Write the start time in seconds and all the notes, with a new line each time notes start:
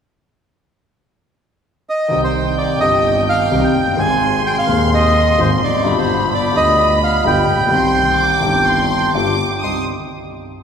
1.89 D#5
2.08 C2 C3 D#3 G3 C4 G5
2.13 G4
2.24 C5
2.58 D5
2.78 G1 G2 D#3 G3 C4 D#5
2.83 G4
3.29 F5
3.51 C2 C3 D#3 G3 C4 G4
3.64 G5
3.74 F#1
3.81 F1
3.87 F#1
3.93 G1 D#3 C6
3.97 G#1 G#2 G#3 C4 G#4 G#5
4.47 G5
4.58 F5
4.66 D#1 D#2 D#3 G#3 C4
4.70 G#4
4.94 D#5
5.38 G#1 G#2 D#3 G#3 C4 G#4 C5
5.61 F1 D5
5.68 E2
5.73 F2
5.78 F#2
5.82 G1 G2 B2 D3 G3 B5
5.86 F4
5.98 C5
6.34 D5
6.53 D2 D3 G3 B3 F4 D#5
7.04 F5
7.24 G1 G2 D3 G3 B3 F4 G5
7.49 A#1
7.55 A1
7.60 A#1
7.65 B1 D#3
7.69 C2 C3 G3 C4 G4 C6
8.18 D6
8.40 G1 G2 D#3 G3 C4
8.44 G1 G4
8.65 C6
9.13 G1 G2 D3 G3 B3 F4 D6
9.62 C2 G3 C4 D#4 C6 D#6